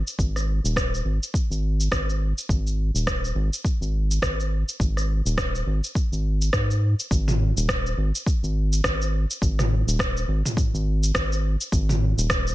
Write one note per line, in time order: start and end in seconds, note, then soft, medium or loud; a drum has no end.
0.07 cabasa medium
0.18 0.60 G#1 loud
0.18 kick medium
0.18 cabasa medium
0.36 cross-stick soft
0.36 cabasa soft
0.64 1.02 D#1 loud
0.64 cabasa medium
0.76 kick medium
0.76 cross-stick medium
0.76 cabasa medium
0.95 cabasa soft
1.05 1.19 G#1 medium
1.23 cabasa medium
1.34 kick medium
1.34 cabasa soft
1.50 1.88 G#1 medium
1.50 cabasa soft
1.81 cabasa medium
1.92 2.33 G#1 medium
1.92 kick medium
1.92 cross-stick medium
1.92 cabasa soft
2.10 cabasa soft
2.38 cabasa medium
2.49 2.91 G#1 loud
2.49 kick medium
2.49 cabasa medium
2.67 cabasa soft
2.94 3.33 D#1 loud
2.94 cabasa medium
3.07 kick medium
3.07 cross-stick medium
3.07 cabasa medium
3.25 cabasa soft
3.35 3.50 G#1 medium
3.53 cabasa medium
3.64 kick medium
3.64 cabasa soft
3.81 4.19 G#1 loud
3.81 cabasa soft
4.11 cabasa medium
4.22 4.64 G#1 medium
4.22 kick medium
4.22 cross-stick medium
4.22 cabasa soft
4.40 cabasa soft
4.69 cabasa medium
4.80 5.21 G#1 medium
4.80 kick medium
4.80 cabasa medium
4.97 cross-stick soft
4.97 cabasa soft
5.25 5.63 D#1 loud
5.25 cabasa medium
5.38 kick medium
5.38 cross-stick loud
5.38 cabasa soft
5.55 cabasa soft
5.66 5.81 G#1 medium
5.84 cabasa medium
5.95 kick loud
5.95 cabasa soft
6.12 6.50 G#1 medium
6.12 cabasa soft
6.42 cabasa medium
6.53 6.95 G#2 medium
6.53 kick medium
6.53 cross-stick medium
6.53 cabasa soft
6.71 cabasa soft
7.00 cabasa medium
7.11 7.52 G#1 loud
7.11 kick loud
7.11 cabasa medium
7.28 mid tom medium
7.28 cabasa soft
7.57 7.94 D#1 loud
7.57 cabasa medium
7.69 kick loud
7.69 cross-stick loud
7.69 cabasa medium
7.86 cabasa soft
7.97 8.12 G#1 medium
8.15 cabasa medium
8.26 kick loud
8.26 cabasa medium
8.43 8.81 G#1 medium
8.43 cabasa soft
8.73 cabasa medium
8.84 9.25 G#1 loud
8.84 kick loud
8.84 cross-stick loud
8.84 cabasa medium
9.02 cabasa soft
9.31 cabasa medium
9.42 9.83 G#1 loud
9.42 kick loud
9.42 cabasa medium
9.59 cross-stick soft
9.59 mid tom medium
9.59 cabasa soft
9.87 10.25 D#1 loud
9.87 cabasa medium
9.99 kick loud
9.99 cross-stick loud
9.99 cabasa medium
10.17 cabasa soft
10.28 10.42 G#1 medium
10.46 mid tom medium
10.46 cabasa medium
10.57 kick loud
10.57 cabasa medium
10.74 11.12 G#1 loud
10.74 cabasa soft
11.03 cabasa medium
11.15 11.56 G#1 medium
11.15 kick loud
11.15 cross-stick loud
11.15 cabasa medium
11.32 cabasa soft
11.61 cabasa medium
11.72 12.14 G#1 loud
11.72 kick loud
11.72 cabasa medium
11.89 mid tom medium
11.89 cabasa soft
12.18 12.55 D#1 loud
12.18 cabasa medium
12.30 kick loud
12.30 cross-stick loud
12.30 cabasa medium
12.47 cabasa soft